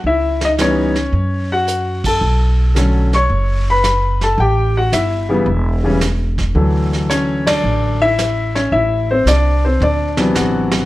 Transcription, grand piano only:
X:1
M:4/4
L:1/8
Q:"Swing" 1/4=110
K:D
V:1 name="Grand piano"
[Ee] [_E_e] [Cc]3 [Ff]2 [Aa]- | [Aa]3 [cc']2 [Bb]2 [Aa] | [Gg] [Ff] [Ee]4 z2 | z2 [Cc] [Dd]2 [Ee]2 [Cc] |
[Ee] [=C=c] [Dd] [Cc] [Dd]2 [Ff]2 |]
V:2 name="Grand piano" clef=bass
z2 [E,G,B,_E] z4 z | z2 [D,F,A,C] z4 z | z3 [C,E,G,B,] z [C,E,G,C] z2 | [D,E,F,A,]4- [D,E,F,A,] z3 |
z4 z [=C,E,F,B,]3 |]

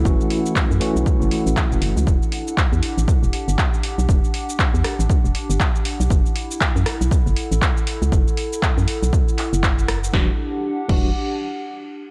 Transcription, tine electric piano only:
X:1
M:4/4
L:1/8
Q:"Swing 16ths" 1/4=119
K:Edor
V:1 name="Tine electric piano"
[E,A,CF]3 [E,A,CF]4- [E,A,CF] | z8 | z8 | z8 |
z8 | [E,G,DF] z2 [E,G,DF] z4 |]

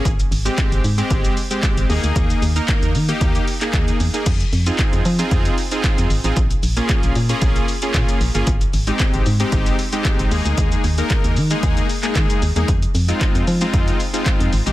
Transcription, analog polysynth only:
X:1
M:4/4
L:1/16
Q:1/4=114
K:Fm
V:1 name="Analog polysynth"
z3 [A,CG]3 z [A,CG]3 z [A,CG]3 [B,EA]2- | [B,EA]2 z [B,EB]3 z [B,EG]3 z [B,EA]3 z [B,EA] | z3 [CEFA]3 z [CEFA]3 z [CEFA]3 z [CEFA] | z3 [B,DFA]3 z [B,DFA]3 z [B,DFA]3 z [B,DFA] |
z3 [A,CEG]3 z [A,CEG]3 z [A,CEG]3 [A,B,EA]2- | [A,B,EA]2 z [A,B,EB]3 z [A,B,EA]3 z [A,B,EA]3 z [A,B,EA] | z3 [A,CEF]3 z [A,CEF]3 z [A,CEF]3 z [A,CEG] |]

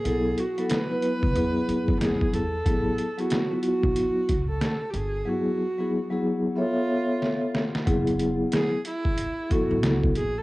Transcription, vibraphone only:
X:1
M:4/4
L:1/16
Q:"Swing 16ths" 1/4=92
K:F#m
V:1 name="Vibraphone"
[F,B,EA]2 z [F,B,EA] z [F,B,EB]3 [F,B,EG]6 z2 | [F,B,EG]2 z [F,B,EG] z [F,B,E^EF]4- [F,B,=E^EF] z6 | [F,B,EG]2 z [F,B,EG] z [F,B,EG]3 [B,Ace]6 z2 | [F,B,EG]4- [F,B,EG] z4 z [F,B,EA]4 z2 |]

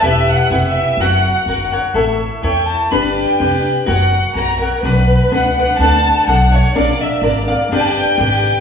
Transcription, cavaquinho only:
X:1
M:2/4
L:1/8
Q:1/4=125
K:Bm
V:1 name="Cavaquinho"
[EGBe]2 [EGBe]2 | [F^Acf]2 [FAcf] [Acf] | [EAce]2 [EAce]2 | [DGBd]2 [DGBd]2 |
[F^Acf]2 [FAcf] [Acf] | [DBdf]2 [DBdf] [Bdf] | [K:D] [DAdf]2 [DAdf]2 | [D_Bd=f]2 [DBdf] [Bdf] |
[DGBd]2 [DGBd]2 |]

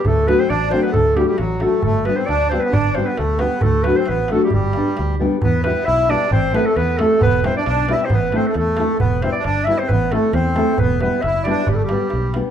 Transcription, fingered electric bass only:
X:1
M:2/4
L:1/8
Q:1/4=134
K:G
V:1 name="Fingered electric bass" clef=bass
D,,2 A,,,2 | D,,2 A,,,2 | G,,,2 D,,2 | G,,,2 D,,2 |
D,,2 A,,,2 | G,,,2 D,,2 | E,,2 B,,,2 | A,,,2 E,,2 |
E,,,2 B,,,2 | A,,,2 E,,2 | E,,,2 G,,,2 | A,,,2 E,,2 |
E,,,2 F,,,2 | G,,,2 B,,,2 |]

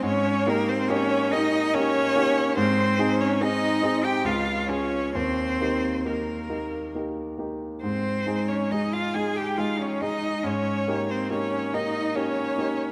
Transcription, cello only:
X:1
M:3/4
L:1/16
Q:1/4=70
K:Ebmix
V:1 name="Cello"
D2 B, C D2 E2 D4 | C3 D E3 G F2 D2 | C4 B,4 z4 | C3 D E F A G F D E2 |
D3 C D2 E2 D4 |]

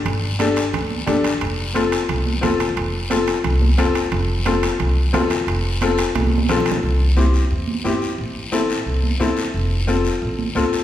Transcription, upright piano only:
X:1
M:4/4
L:1/8
Q:1/4=177
K:Flyd
V:1 name="Upright piano"
z2 [DGA] z3 [DGA] z | z2 [CFA] z3 [CFA] z | z2 [CFA] z3 [CFA] z | z2 [CFA] z3 [CFA] z |
z2 [CFA] z3 [CFA] z | z2 [CEG] z3 [CEG] z | z2 [CEA] z3 [CEA] z | z2 [CFA] z3 [CFA] z |]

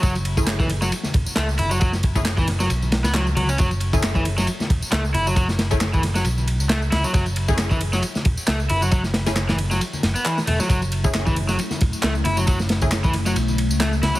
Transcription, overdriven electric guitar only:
X:1
M:4/4
L:1/16
Q:"Swing 16ths" 1/4=135
K:F#m
V:1 name="Overdriven electric guitar" clef=bass
F, z4 E, z F, z4 A, z E F, | F, z4 E, z F, z3 B, F, z F, C | F, z4 E, z F, z4 A, z E F, | F, z4 E, z F, z4 A, z E F, |
F, z4 E, z F, z4 A, z E F, | F, z4 E, z F, z3 B, E, z A, F, | F, z4 E, z F, z4 A, z E F, | F, z4 E, z F, z4 A, z E F, |]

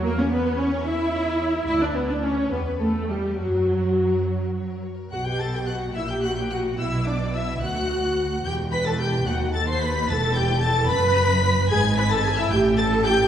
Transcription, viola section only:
X:1
M:6/8
L:1/16
Q:3/8=73
K:Bm
V:1 name="Viola section"
^A, C B,2 C2 E6 | E D B, D C2 B,2 A,2 G,2 | F,8- F,2 z2 | F G A G F2 E G F G F2 |
E2 D2 E2 F6 | G2 B A G2 F2 A =c B2 | A2 G2 A2 B6 | ^G2 B A G E =G2 A2 G2 |]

